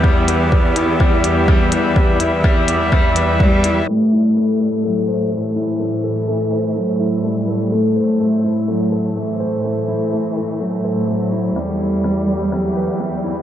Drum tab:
HH |-x-x-x-x|-x-x-x-x|--------|--------|
BD |o-o-o-o-|o-o-o-o-|--------|--------|

HH |--------|--------|--------|
BD |--------|--------|--------|